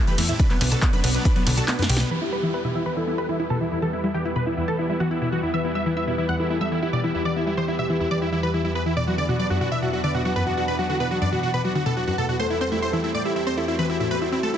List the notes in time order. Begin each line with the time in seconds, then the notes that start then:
Already playing: G3 A3 C4
0.07 E3 G4 B4 B5, closed hi-hat
0.18 E2 A3 E4 E5, open hi-hat, ride
0.29 A2 E4 E5, closed hi-hat
0.40 F#3 B3 D4 B4 B5, kick, closed hi-hat
0.50 F#3 B3 B4, clap, closed hi-hat
0.61 B1 D3 B3 B4, open hi-hat, ride
0.72 B2 F#4 A4 A5, closed hi-hat
0.82 B3 B4, kick, clap, closed hi-hat
0.93 F#2 D4 B4 B5, closed hi-hat
1.04 B1 B2 B3 B4, open hi-hat, ride
1.15 B2 B3 B4, closed hi-hat
1.25 B2 D4 B4 B5, kick, closed hi-hat
1.36 F#3 B3 B4, closed hi-hat
1.47 B1 D3 B3 B4, open hi-hat, ride
1.57 B2 F#4 A4 A5, closed hi-hat
1.68 B3 B4, snare, clap, closed hi-hat
1.79 F#2 B3 B4, snare, closed hi-hat
1.90 B1 B2 B3 G4 G5, open hi-hat, ride
1.97 B2 B3 B4, snare, closed hi-hat
2.11 E2 E3 G3 B3 G4 B4 B5
2.22 B3 E4 E5
2.32 G3 B4 B5
2.43 E3 E4 E5
2.54 E4 B4 B5
2.65 B2 E4 E5
2.75 E3 E4 E5
2.86 E2 B4 B5
2.97 E3 E4 A4 E5
3.07 B3 E4 E5
3.18 G3 B4 B5
3.29 E3 E4 E5
3.39 E4 B4 E5
3.50 B2 A4 A5
3.61 E3 E4 E5
3.72 E2 E4 E5
3.82 E3 A4 A5
3.93 B3 E4 E5
4.04 G3 E4 E5
4.14 E3 G4 G5
4.25 E4 E5
4.36 B2 B4 B5
4.46 E3 E4 E5
4.57 E2 E4 E5
4.68 E3 A4 A5
4.79 B3 E4 E5
4.89 G3 E4 E5
5.00 E3 F#4 F#5
5.11 E4 E5
5.22 B2 E4 E5
5.32 E3 F#4 F#5
5.43 E2 E4 E5
5.54 E3 B4 E5 E6
5.64 B3 E4 E5
5.75 G3 E5 E6
5.86 E3 E4 E5
5.97 E4 E5 E6
6.07 B2 E4 E5
6.18 E3 E4 E5
6.29 E2 F#5 F#6
6.40 E3 E4 A4 E5
6.50 B3 E4 E5
6.61 G3 E5 E6
6.72 E3 E4 E5
6.82 E4 G4 E5
6.93 B2 D5 D6
7.04 E3 E4 E5
7.14 E2 E4 E5
7.25 E3 D5 D6
7.36 B3 E4 E5
7.47 G3 E4 E5
7.57 E3 C5 C6
7.68 E4 E5
7.79 B2 E5 E6
7.90 E3 E4 E5
8.00 E2 E4 E5
8.11 E3 D5 D6
8.22 B3 E4 E5
8.32 E3 E4 E5
8.43 E3 B4 B5
8.54 E3 E4 E5
8.65 G3 E4 E5
8.75 B3 B4 B5
8.86 E3 E4 E5
8.97 B2 B3 D4 D5 D6
9.07 F#3 F#4 F#5
9.18 D3 D5 D6
9.29 B2 F#4 F#5
9.39 F#3 D5 D6
9.50 F#2 F#4 F#5
9.61 B2 F#4 F#5
9.72 B2 E5 E6
9.82 B2 F#4 E5 F#5
9.93 F#3 F#4 F#5
10.04 D3 D5 D6
10.14 B2 F#4 F#5
10.25 F#3 F#4 F#5
10.36 F#2 B4 B5
10.47 B2 F#4 F#5
10.57 B2 F#4 F#5
10.68 B2 B4 B5
10.79 F#3 F#4 F#5
10.89 D3 F#4 F#5
11.00 B2 B4 B5
11.11 F#3 F#4 F#5
11.22 F#2 D5 D6
11.32 B2 F#4 F#5
11.43 B2 F#4 F#5
11.54 B2 B4 B5
11.64 F#3 F#4 F#5
11.75 D3 F#4 F#5
11.86 B2 A4 A5
11.97 F#3 F#4 F#5
12.07 F#2 F#4 F#5
12.18 B2 A4 A5
12.29 B2 F#4 F#5
12.39 E2 G3 A3 C4 A4 C5 C6
12.50 E4 E5
12.61 C4 C5 C6
12.72 A3 E4 E5
12.82 E4 C5 C6
12.93 E3 E4 E5
13.04 A3 E4 E5
13.15 A2 D5 D6
13.25 A3 E4 G4 E5
13.36 E4 E5
13.47 C4 C5 C6
13.57 A3 E4 E5
13.68 E4 F#4 E5
13.79 E3 B4 B5
13.89 A3 E4 E5
14.00 A2 E4 E5
14.11 A3 B4 B5
14.22 E4 E5
14.32 C4 E4 E5
14.43 A3 A4 A5
14.54 E4 E5